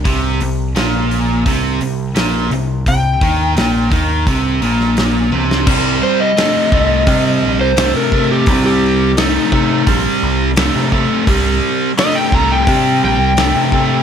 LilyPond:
<<
  \new Staff \with { instrumentName = "Electric slide guitar" } { \time 4/4 \key c \minor \tempo 4 = 86 r1 | g''2 r2 | r8 c''16 ees''2 c''8 bes'8 g'16~ | g'16 g'8. ees'4 r2 |
r4 ees''16 g''16 bes''16 g''8. g''4. | }
  \new Staff \with { instrumentName = "Overdriven electric guitar" } { \clef bass \time 4/4 \key c \minor c8 c8 bes,4 c8 c8 bes,8 c8 | c8 ees8 bes,8 ees8 c8 bes,4 c8 | <c g>4 <c a>8 <c a>8 <c g>4 <c a>8 <c a>8 | <c g>4 <c a>8 <c a>8 <c g>4 <c a>8 <c a>8 |
<c g>4 <c a>8 <c a>8 <c g>4 <c a>8 <c a>8 | }
  \new Staff \with { instrumentName = "Picked electric bass" } { \clef bass \time 4/4 \key c \minor c,8 c,8 bes,,4 c,8 c,8 bes,,8 c,8 | c,8 ees,8 bes,,8 ees,8 c,8 bes,,4 c,8 | c,8 r4 c,8 c8 bes,,16 c,8 c8. | c,4. c8 bes,,16 r16 c,8. c8 r16 |
c,8 r4 c,8 c8 bes,,16 c,8 c8. | }
  \new DrumStaff \with { instrumentName = "Drums" } \drummode { \time 4/4 <hho bd>8 hho8 <hho sn>8 hho8 <hho bd>8 hho8 <hho sn>8 hho8 | <hho bd>8 <hho bd>8 <hho sn>8 <hho bd>8 <hho bd>8 hho16 sn16 <hho sn>8 tommh16 sn16 | <cymc bd>4 <hho sn>8 bd8 <hho bd>4 <hho sn>8 bd8 | <hho bd>4 <hho sn>8 bd8 <hho bd>4 <hho sn>16 sn16 bd8 |
<hho bd>4 <hho sn>8 bd8 <hho bd>4 <hho sn>8 bd8 | }
>>